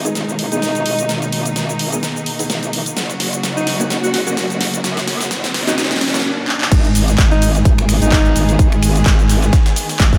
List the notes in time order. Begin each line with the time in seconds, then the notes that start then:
Already playing: G#1 B2 D#3 G#3 D#4, riser
0.05 B3 D#4 G#4, shaker
0.15 G#1, snare, closed hi-hat, shaker
0.29 shaker
0.39 open hi-hat
0.52 G#1 B3 D#4 G#4, closed hi-hat, shaker
0.62 snare, open hi-hat, shaker
0.75 closed hi-hat, shaker
0.86 G#1, open hi-hat
0.99 closed hi-hat, shaker
1.09 G#1 A#3, snare, closed hi-hat, shaker
1.22 closed hi-hat, shaker
1.32 open hi-hat
1.45 closed hi-hat, shaker
1.56 G#1, snare, closed hi-hat, shaker
1.70 shaker
1.79 open hi-hat
1.92 B3 D#4 G#4, closed hi-hat, shaker
2.03 snare, closed hi-hat, shaker
2.16 shaker
2.26 open hi-hat
2.39 B3 D#4 G#4, open hi-hat, shaker
2.50 G#1, snare, closed hi-hat, shaker
2.63 closed hi-hat, shaker
2.73 open hi-hat
2.86 closed hi-hat, shaker
2.97 F#1 C#3 F#3 F#4, snare, closed hi-hat, shaker
3.10 closed hi-hat, shaker
3.20 snare, open hi-hat
3.33 closed hi-hat, shaker
3.43 F#1, snare, closed hi-hat, shaker
3.56 D#4, shaker
3.67 snare, open hi-hat
3.80 A#3 C#4 F#4, closed hi-hat, shaker
3.90 F#1, snare, closed hi-hat, shaker
4.03 F#4, shaker
4.14 F#4, snare, open hi-hat
4.27 F#1 A#3 C#4 F#4, closed hi-hat, shaker
4.37 snare, open hi-hat, shaker
4.50 closed hi-hat, shaker
4.61 F#1, snare, open hi-hat
4.74 closed hi-hat, shaker
4.84 F#2, snare, closed hi-hat, noise sweep, shaker
4.97 snare, closed hi-hat, shaker
5.08 snare, open hi-hat
5.21 snare, closed hi-hat, shaker
5.31 F#1, snare, closed hi-hat, shaker
5.44 snare, shaker
5.54 snare, open hi-hat
5.67 A#3 C#4 D#4 F#4, snare, shaker
5.78 F#1 D#4, snare, closed hi-hat, shaker
5.84 snare
5.91 snare, closed hi-hat, shaker
5.96 snare
6.01 F#1, snare, open hi-hat
6.08 snare
6.14 A#3 C#4 F#4, snare, open hi-hat, shaker
6.19 snare
6.48 clap
6.61 clap
6.72 G#1 D#3 G#3 B3 G#4, kick, closed hi-hat, crash, shaker
6.85 closed hi-hat, shaker
6.95 closed hi-hat, open hi-hat, shaker
7.08 snare, closed hi-hat, shaker
7.18 G#1, kick, snare, clap, closed hi-hat, shaker
7.31 D#4, snare, closed hi-hat, shaker
7.42 closed hi-hat, open hi-hat, shaker
7.55 snare, closed hi-hat, shaker
7.65 G#1, kick, closed hi-hat, shaker
7.78 finger snap, shaker
7.89 finger snap, closed hi-hat, open hi-hat, shaker
8.02 G#1 D#4, closed hi-hat, shaker
8.12 kick, snare, clap, closed hi-hat, open hi-hat, shaker
8.25 closed hi-hat, shaker
8.36 G#1, closed hi-hat, open hi-hat, shaker
8.49 closed hi-hat, shaker
8.59 G#1, kick, closed hi-hat, shaker
8.72 finger snap, closed hi-hat, shaker
8.83 finger snap, open hi-hat, shaker
8.96 snare, closed hi-hat, shaker
9.06 G#1, kick, snare, clap, closed hi-hat, shaker
9.19 closed hi-hat, shaker
9.29 clap, closed hi-hat, open hi-hat, shaker
9.43 snare, closed hi-hat, shaker
9.53 kick, snare, closed hi-hat, shaker
9.66 snare, closed hi-hat, shaker
9.76 snare, closed hi-hat, open hi-hat, shaker
9.89 snare, open hi-hat, shaker
10.00 G#1, kick, snare, clap, closed hi-hat, shaker
10.13 kick, closed hi-hat, shaker